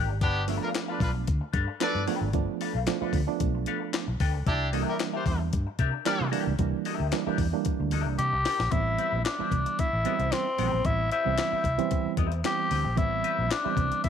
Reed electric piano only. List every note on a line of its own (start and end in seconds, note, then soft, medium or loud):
0.00 0.18 G4 medium
0.47 1.27 F3 medium
0.47 1.27 A3 medium
0.47 1.27 B3 medium
0.47 1.27 D4 medium
1.80 2.01 F3 medium
1.80 2.01 A3 medium
1.80 2.01 B3 medium
1.80 2.01 D4 medium
2.07 2.27 F3 medium
2.07 2.28 A3 medium
2.07 2.28 B3 medium
2.07 2.28 D4 medium
2.34 2.74 F3 medium
2.34 2.75 A3 medium
2.34 2.75 B3 medium
2.34 2.75 D4 medium
2.87 2.97 F3 loud
2.87 2.98 A3 medium
2.87 2.98 B3 medium
2.87 2.98 D4 medium
3.01 3.20 F3 medium
3.01 3.21 A3 medium
3.01 3.21 B3 medium
3.01 3.21 D4 medium
3.27 4.07 F3 medium
3.27 4.07 A3 medium
3.27 4.07 B3 medium
3.27 4.07 D4 loud
4.73 5.52 E3 medium
4.73 5.53 G3 medium
4.73 5.53 A#3 medium
4.73 5.53 D4 medium
6.06 6.26 E3 medium
6.06 6.26 G3 medium
6.06 6.26 A#3 medium
6.06 6.27 D4 loud
6.32 6.53 E3 medium
6.32 6.53 G3 medium
6.32 6.53 A#3 medium
6.32 6.53 D4 loud
6.59 7.00 E3 medium
6.59 7.00 G3 medium
6.59 7.00 A#3 medium
6.59 7.00 D4 medium
7.12 7.23 E3 loud
7.12 7.23 G3 medium
7.12 7.23 A#3 medium
7.12 7.23 D4 loud
7.27 7.46 E3 medium
7.27 7.46 G3 medium
7.27 7.46 A#3 medium
7.27 7.47 D4 medium
7.53 8.32 E3 medium
7.53 8.33 G3 medium
7.53 8.33 A#3 medium
7.53 8.33 D4 loud
8.72 9.22 E3 medium
8.72 9.22 G3 medium
8.72 9.22 B3 medium
8.72 9.22 C4 medium
9.38 9.88 E3 medium
9.38 9.88 G3 medium
9.38 9.89 B3 medium
9.38 9.89 D4 medium
10.05 10.45 E3 medium
10.05 10.45 G3 medium
10.05 10.46 B3 medium
10.05 10.46 C4 medium
10.58 11.08 E3 medium
10.58 11.08 G3 medium
10.58 11.08 B3 medium
10.58 11.08 C4 medium
11.25 11.64 E3 medium
11.25 11.64 G3 medium
11.25 11.65 B3 medium
11.25 11.65 C4 medium
11.78 12.28 E3 loud
11.78 12.28 G3 medium
11.78 12.28 B3 medium
11.78 12.28 C4 loud
12.44 12.85 E3 medium
12.44 12.85 G3 medium
12.44 12.85 B3 medium
12.44 12.85 C4 medium
12.96 13.47 E3 medium
12.96 13.47 G3 medium
12.96 13.47 B3 medium
12.96 13.47 C4 medium
13.65 14.09 E3 medium
13.65 14.09 G3 medium
13.65 14.09 B3 medium
13.65 14.09 C4 medium